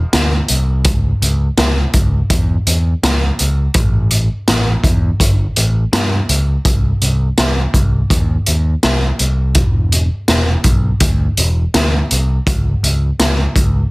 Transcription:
0.13 D2, snare, closed hi-hat
0.48 C2, closed hi-hat
0.84 C#2, kick, closed hi-hat
1.22 C#2, closed hi-hat
1.57 C#2, snare, closed hi-hat
1.93 C#2, kick, closed hi-hat
2.30 E2, kick, closed hi-hat
2.67 E2, closed hi-hat
3.03 C#2, snare, closed hi-hat
3.39 C#2, closed hi-hat
3.74 A1, kick, closed hi-hat
4.10 closed hi-hat
4.47 A1, snare, closed hi-hat
4.84 E2, kick, closed hi-hat
5.20 G1, kick, closed hi-hat
5.56 A1, closed hi-hat
5.93 G2, snare, closed hi-hat
6.29 C#2, closed hi-hat
6.65 C2, kick, closed hi-hat
7.01 C2, closed hi-hat
7.37 C2, snare, closed hi-hat
7.74 C2, kick, closed hi-hat
8.10 D#2, kick, closed hi-hat
8.46 D#2, closed hi-hat
8.83 C2, snare, closed hi-hat
9.19 C2, closed hi-hat
9.54 E1, kick, closed hi-hat
9.92 closed hi-hat
10.28 E1, snare, closed hi-hat
10.64 B1, kick, closed hi-hat
11.00 D2, kick, closed hi-hat
11.37 E1, closed hi-hat
11.74 D2, snare, closed hi-hat
12.11 C2, closed hi-hat
12.47 C#2, kick, closed hi-hat
12.83 C#2, closed hi-hat
13.19 C#2, snare, closed hi-hat
13.56 C#2, kick, closed hi-hat

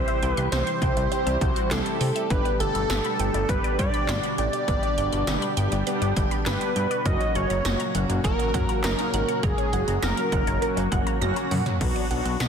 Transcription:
Already playing: C3 E3 G3 C4 E4 G4 C5
0.08 E5, closed hi-hat
0.22 C2 G3 C4 E4 G4 G5, closed hi-hat
0.33 B4
0.37 C2 C6, closed hi-hat
0.52 C2 G3 C4 E4 C5 C7, snare, closed hi-hat
0.67 C6, closed hi-hat
0.82 C2 G3 C4 E4 G4 G5, kick, closed hi-hat
0.97 C2 E5, closed hi-hat
1.12 G3 C4 E4 G4 C5, closed hi-hat
1.26 C2 E5, closed hi-hat
1.41 C2 G3 C4 E4 F#4 G5, kick, closed hi-hat
1.56 C6, closed hi-hat
1.71 C2 G3 C4 E4 G4 A4 C7, snare, clap, closed hi-hat
1.86 C6, closed hi-hat
2.01 C3 G3 C4 E4 G4 G5, open hi-hat
2.16 E5, closed hi-hat
2.30 G1 B2 D3 G3 B3 D4 G4 B4, kick, closed hi-hat
2.45 D5, closed hi-hat
2.60 G1 G3 B3 D4 G4 A4 G5, closed hi-hat
2.75 G1 B5, closed hi-hat
2.90 G1 G3 B3 D4 G4 B6, snare, closed hi-hat
3.05 B5, closed hi-hat
3.19 G1 G3 B3 D4 G4 G5, closed hi-hat
3.34 G1 D5, closed hi-hat
3.49 G1 G3 B3 D4 G4 B4, kick, closed hi-hat
3.64 D5, closed hi-hat
3.79 G2 G3 B3 G4 D5 G5, kick, closed hi-hat
3.94 B5, closed hi-hat
4.08 G1 G3 B3 D4 F#4 B6, snare, clap, closed hi-hat
4.23 B5, closed hi-hat
4.38 A1 G3 B3 D4 G4 D5 G5, closed hi-hat
4.53 D5, closed hi-hat
4.68 G1 G3 B3 D4 G4 B4, kick, closed hi-hat
4.83 D5, closed hi-hat
4.98 G1 G3 B3 D4 F#4 G5, closed hi-hat
5.13 G1 B5, closed hi-hat
5.27 G1 G3 B3 D4 G4 B6, snare, closed hi-hat
5.42 B5, closed hi-hat
5.57 G1 G3 B3 D4 G4 G5, closed hi-hat
5.72 G1 D5, closed hi-hat
5.87 G3 B3 D4 G4 B4, closed hi-hat
6.02 G1 D5, closed hi-hat
6.16 G1 G3 B3 D4 G4 G5, kick, closed hi-hat
6.31 B5, closed hi-hat
6.46 G1 G3 B3 D4 G4 B4 B6, snare, clap, closed hi-hat
6.61 B5, closed hi-hat
6.76 G2 G3 B3 D4 F#4 G5, closed hi-hat
6.91 D5, closed hi-hat
7.06 F#1 A#2 C#3 F#3 A#3 C#4 F#4 A#4 D#5, kick, closed hi-hat
7.20 C#5, closed hi-hat
7.35 F#1 F#3 A#3 C#4 F#4 C#5 F#5, closed hi-hat
7.50 F#1 A#5, closed hi-hat
7.65 F#1 F#3 A#3 C#4 F#4 A#6, snare, closed hi-hat
7.80 A#5, closed hi-hat
7.95 F#1 F#3 A#3 C#4 F#4 F#5, closed hi-hat
8.10 F#1 C#5, closed hi-hat
8.24 F#1 F#3 A#3 C#4 F#4 A#4, kick, closed hi-hat
8.39 C#5, closed hi-hat
8.54 F#2 F#3 A#3 C#4 F#4 F#5, kick, closed hi-hat
8.69 A#5, closed hi-hat
8.84 F#1 F#3 A#3 C#4 D#4 A#4 A#6, snare, clap, closed hi-hat
8.99 A#5, closed hi-hat
9.13 G#1 F#3 A#3 C#4 F#4 F#5, closed hi-hat
9.28 C#5, closed hi-hat
9.43 F#1 F#3 A#3 C#4 G#4 A#4, kick, closed hi-hat
9.58 C#5, closed hi-hat
9.73 F#1 F#3 A#3 C#4 F#4 F#5, closed hi-hat
9.88 F#1 A#5, closed hi-hat
10.03 F#1 F#3 A#3 C#4 F#4 A#4 A#6, snare, closed hi-hat
10.17 A#5, closed hi-hat
10.32 F#1 A#3 F#5, kick, closed hi-hat
10.47 F#1 C#5, closed hi-hat
10.62 F#3 A#3 C#4 F#4 A#4, closed hi-hat
10.77 F#1 C#5, closed hi-hat
10.92 F#1 F#3 A#3 C#4 F#4 F#5, kick, closed hi-hat
11.07 A#5, closed hi-hat
11.21 F#1 F#3 A#3 C#4 F#4 A#6, closed hi-hat, high tom
11.36 A#5, closed hi-hat
11.51 F#2 F#3 A#3 C#4 F#4 F#5, mid tom, open hi-hat
11.66 C#5, closed hi-hat, floor tom
11.81 B1 F#3 B3 D4 F#4 B4, kick, closed hi-hat, crash
11.96 D5, closed hi-hat
12.10 B1 F#3 B3 D4 F#4 F#5, closed hi-hat
12.25 B1 B5, closed hi-hat
12.40 B1 F#3 B3 D4 B6, snare, closed hi-hat

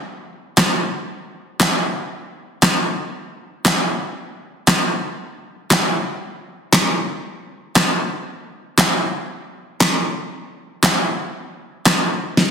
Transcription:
0.57 snare, clap
1.60 snare, clap
2.63 snare, clap
3.65 snare, clap
4.68 snare, clap
5.71 snare, clap
6.73 snare, clap
7.76 snare, clap
8.78 snare, clap
9.81 snare, clap
10.83 snare, clap
11.86 snare, clap
12.37 snare

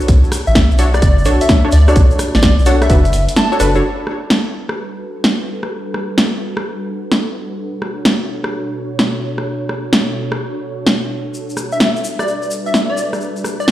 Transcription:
Already playing: D4 F#4 A4 C#5
0.00 shaker
0.08 B1, kick, closed hi-hat, shaker
0.24 shaker
0.32 cross-stick, open hi-hat, shaker
0.47 A1 E5, shaker
0.55 E5, kick, snare, closed hi-hat, shaker
0.71 B1, shaker
0.78 D4 F#4 A4 C#5, open hi-hat, shaker
0.94 D5, cross-stick, shaker
1.02 F#1, kick, closed hi-hat, shaker
1.18 shaker
1.25 B1 D4 F#4 A4 C#5, open hi-hat, shaker
1.41 E5, closed hi-hat, shaker
1.49 kick, snare, closed hi-hat, shaker
1.65 D4 F#4 A4 C#5
1.72 D2 D5, open hi-hat, shaker
1.88 D4 F#4 A4 C#5 D5, cross-stick, shaker
1.96 B1, kick, closed hi-hat, shaker
2.11 shaker
2.19 cross-stick, open hi-hat, shaker
2.35 A1 D5, snare, shaker
2.42 D5, kick, snare, closed hi-hat, shaker
2.58 B1, shaker
2.66 D4 F#4 A4 C#5 F#5, open hi-hat, shaker
2.82 E5, cross-stick, closed hi-hat, shaker
2.90 F#1 D4 F#4 A4 B4, kick, closed hi-hat, shaker
3.05 closed hi-hat, shaker
3.13 F#1, open hi-hat, shaker
3.29 closed hi-hat, shaker
3.36 A5, snare, closed hi-hat, shaker
3.52 D4 F#4 A4 C#5, shaker
3.60 F#1 D4 F#4 A4 B4, open hi-hat, shaker
3.75 D4 F#4 A4 C#5, shaker
3.83 G3 D4 F#4 A4 B4
4.07 cross-stick
4.30 snare
4.69 cross-stick
5.24 snare
5.63 cross-stick
5.94 cross-stick
6.18 snare
6.57 cross-stick
7.12 snare
7.35 B2 A4 C#5
7.82 cross-stick
8.05 snare
8.44 cross-stick
8.99 snare
9.38 cross-stick
9.69 cross-stick
9.93 snare
10.32 cross-stick
10.87 snare
11.34 G3 B4, shaker
11.50 shaker
11.57 cross-stick, shaker
11.72 E5, shaker
11.80 E5, snare, shaker
11.96 shaker
12.04 shaker
12.19 D5, cross-stick, shaker
12.28 shaker
12.42 shaker
12.51 shaker
12.66 E5, shaker
12.74 snare, shaker
12.90 D5
12.97 shaker
13.13 cross-stick, shaker
13.21 shaker
13.36 shaker
13.44 cross-stick, shaker
13.60 D5, shaker
13.68 snare

